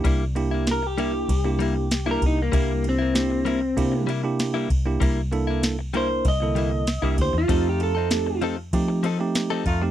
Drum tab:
RD |xxxxxxxx|xxxxxxxx|xxxxxxxx|xxxxxxxx|
SD |--o---o-|--o---o-|--o---o-|--o---o-|
BD |o---o--o|o---o--o|o---o--o|o---o--o|